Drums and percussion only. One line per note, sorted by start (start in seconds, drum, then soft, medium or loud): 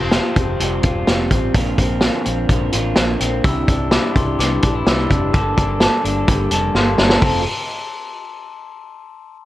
0.11 snare loud
0.11 closed hi-hat medium
0.36 kick medium
0.36 closed hi-hat medium
0.60 closed hi-hat medium
0.83 kick medium
0.83 closed hi-hat medium
1.07 snare medium
1.07 closed hi-hat medium
1.31 kick medium
1.31 closed hi-hat medium
1.54 kick loud
1.54 closed hi-hat medium
1.78 kick medium
1.78 closed hi-hat medium
2.01 snare loud
2.01 closed hi-hat medium
2.25 closed hi-hat medium
2.49 kick medium
2.49 closed hi-hat medium
2.72 closed hi-hat medium
2.96 snare loud
2.96 closed hi-hat medium
3.20 closed hi-hat medium
3.44 kick loud
3.44 closed hi-hat medium
3.68 kick loud
3.68 closed hi-hat medium
3.91 snare loud
3.91 closed hi-hat medium
4.16 kick medium
4.16 closed hi-hat medium
4.40 snare soft
4.40 closed hi-hat medium
4.62 kick medium
4.62 closed hi-hat medium
4.87 snare loud
4.87 closed hi-hat medium
5.11 kick medium
5.11 closed hi-hat medium
5.34 kick loud
5.34 closed hi-hat medium
5.58 kick loud
5.58 closed hi-hat medium
5.80 snare loud
5.80 closed hi-hat medium
6.05 closed hi-hat medium
6.28 kick loud
6.28 closed hi-hat medium
6.51 closed hi-hat medium
6.75 snare medium
6.98 snare medium
7.10 snare medium
7.22 kick loud
7.22 open hi-hat medium